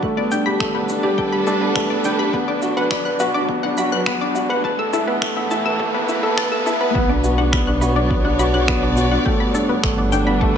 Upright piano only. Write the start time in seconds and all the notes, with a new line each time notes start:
0.03 A3
0.17 B3
0.32 D4
0.46 G4
0.61 A3
0.75 B3
0.90 D4
1.04 G4
1.18 A4
1.33 G4
1.47 D4
1.61 B3
1.76 A3
1.90 B3
2.04 D4
2.19 G4
2.33 B3
2.48 D4
2.62 F#4
2.77 B4
2.91 D5
3.06 B4
3.20 F#4
3.35 D4
3.49 B3
3.64 D4
3.78 F#4
3.92 B4
4.07 B3
4.21 D4
4.35 F#4
4.49 B4
4.64 B4
4.79 A4
4.93 E4
5.08 B3
5.22 A3
5.37 B3
5.51 E4
5.65 A4
5.80 A3
5.94 B3
6.09 E4
6.23 A4
6.37 B4
6.51 A4
6.66 E4
6.81 B3
6.95 B3
7.09 D4
7.24 F#4
7.38 D4
7.53 B3
7.68 D4
7.82 F#4
7.96 D4
8.10 B3
8.25 D4
8.39 F#4
8.54 D4
8.68 B3
8.82 D4
8.97 F#4
9.11 D4
9.25 A3
9.40 B3
9.54 D4
9.68 B3
9.83 A3
9.97 B3
10.12 D4
10.27 B3
10.41 A3